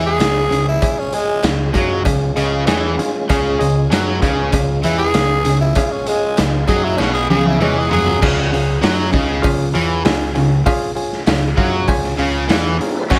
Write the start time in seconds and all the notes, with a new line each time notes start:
Already playing: E2 E3 G#3 C#4 F4 G#4 C#5 D#5
0.06 G#4
0.19 C#2 C#3 G#4 C#5 F5, snare, closed hi-hat, cowbell
0.50 C#2 C#3 G#4 C#5 G#5, closed hi-hat
0.69 E4
0.82 G#3 C#4 F4 G#4 C#5 G#5, muted picked electric bass stroke, muted overdriven electric guitar stroke, muted distorted electric guitar stroke, kick, closed hi-hat, cowbell
0.99 C#4
1.13 G#3 G#4 C#5 G#5, closed hi-hat
1.43 C#2 C#3 G#4 C#5 F5, snare, closed hi-hat, cowbell
1.74 F#2 F#3 G#4 C#5 F5, kick, closed hi-hat, cowbell
2.05 C#2 C#3 G#4 C#5 F5, kick, closed hi-hat, cowbell
2.36 C#2 C#3 G#4 C#5 D#5, closed hi-hat
2.66 E2 E3 G#4 C#5 G#5, snare, closed hi-hat, cowbell
2.98 G#4 C#5 F5, muted overdriven electric guitar stroke, muted distorted electric guitar stroke, muted picked electric bass stroke, closed hi-hat
3.29 C#2 C#3 G#3 C#4 F4 G#4 C#5 F5, kick, closed hi-hat, cowbell
3.59 C#2 C#3 G#4 C#5 D#5, closed hi-hat
3.90 F#2 F#3 G#4 C#5 G#5, snare, closed hi-hat, cowbell
4.21 C#2 C#3 G#4 C#5 F5, kick, closed hi-hat, cowbell
4.52 C#2 C#3 G#4 C#5 F5, kick, closed hi-hat, cowbell
4.84 E2 E3 E4 G#4 C#5 F5, closed hi-hat
4.98 G#4
5.14 C#2 C#3 G#4 C#5 F5, snare, closed hi-hat, cowbell
5.45 C#2 C#3 G#4 C#5 G#5, closed hi-hat
5.61 E4
5.75 G#3 C#4 F4 G#4 C#5 F5, muted picked electric bass stroke, muted overdriven electric guitar stroke, muted distorted electric guitar stroke, kick, closed hi-hat, cowbell
5.91 C#4
6.06 G#3 G#4 C#5 F5, closed hi-hat
6.37 C#2 C#3 G#4 C#5 F5, snare, closed hi-hat, cowbell
6.67 F#2 F#3 G#4 C#5 D#5, kick, closed hi-hat, cowbell
6.84 E4
6.97 B1 B2 C#4 G#4 C#5 F5, snare, cowbell
7.14 G#4
7.30 C#2 C#3 G#4 C#5 F5, high tom
7.45 E4, high tom
7.60 E2 E3 C#4 G#4 C#5 D#5, mid tom, cowbell
7.79 G#4
7.91 F#2 F#3 G#4 C#5 F5, floor tom
8.07 floor tom
8.22 C#2 C#3 F4 G#4 C#5 F5, kick, crash, cowbell
8.52 C#2 C#3 F4 G#4 C#5 F5, open hi-hat
8.83 F#2 F#3 F4 G#4 C#5 G#5, snare, open hi-hat, cowbell
9.12 C#2 C#3 F4 G#4 C#5 D#5, kick, open hi-hat
9.42 C#2 C#3 F4 G#4 C#5 F5, kick, open hi-hat, cowbell
9.74 E2 E3 F4 G#4 C#5 F5, open hi-hat
10.04 C#2 C#3 F4 G#4 C#5 G#5, snare, open hi-hat, cowbell
10.35 C#2 C#3 F4 G#4 C#5 G#5, open hi-hat
10.66 F4 G#4 C#5 F5, muted picked electric bass stroke, muted overdriven electric guitar stroke, muted distorted electric guitar stroke, kick, open hi-hat, cowbell
10.95 F4 G#4 C#5 G#5, open hi-hat
11.12 snare
11.27 C#2 C#3 F4 G#4 C#5 F5, snare, open hi-hat, cowbell
11.57 F#2 F#3 F4 G#4 C#5 F5, kick, open hi-hat
11.88 C#2 C#3 F4 G#4 C#5 G#5, kick, open hi-hat, cowbell
12.04 snare
12.18 C#2 C#3 F4 G#4 C#5 F5, open hi-hat
12.49 E2 E3 F4 G#4 C#5 F5 G#5, snare, open hi-hat, cowbell
12.77 B3 C4 F4 G#4 C#5 A#5, muted distorted electric guitar stroke, muted overdriven electric guitar stroke, muted picked electric bass stroke, open hi-hat
12.81 D4 F5
12.86 E4 F4
12.92 G4 A4
12.97 B4 C5
13.02 D5 E5
13.08 F#1 F#2 C#4 F#4 C#5 F5 F#5, kick, cowbell, crash